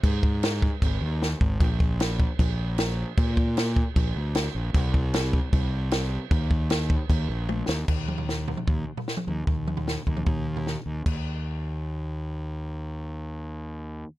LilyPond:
<<
  \new Staff \with { instrumentName = "Fingered electric bass" } { \clef bass \time 4/4 \key aes \lydian \tempo 4 = 152 aes,2 aes,,8 ees,4 aes,,8 | bes,,2 bes,,2 | bes,2 bes,,8 d,4 bes,,8 | c,2 c,2 |
ees,2 ees,8 bes,,4 ees,8 | ees,2 ees,8 r4 ees,8 | ees,4. ees,8 ees,4. ees,8 | ees,1~ |
ees,1 | }
  \new DrumStaff \with { instrumentName = "Drums" } \drummode { \time 4/4 <cymc bd>8 bd8 <cymc sn>8 bd8 <cymc bd>4 sn8 bd8 | <cymc bd>8 bd8 <cymc sn>8 bd8 <cymc bd>4 <cymc sn>4 | <cymc bd>8 bd8 <cymc sn>8 bd8 <cymc bd>4 <cymc sn>4 | <cymc bd>8 bd8 <cymc sn>8 bd8 <cymc bd>4 <cymc sn>4 |
<cymc bd>8 bd8 <cymc sn>8 bd8 <cymc bd>4 tommh8 sn8 | <cymc bd tomfh>8 toml16 tomfh16 sn8 tomfh16 toml16 <bd tomfh>8. tomfh16 sn16 toml16 toml8 | <bd tomfh>8 toml16 tomfh16 sn8 <bd tomfh>16 toml16 <bd tomfh>8. tomfh16 sn4 | <cymc bd>4 r4 r4 r4 |
r4 r4 r4 r4 | }
>>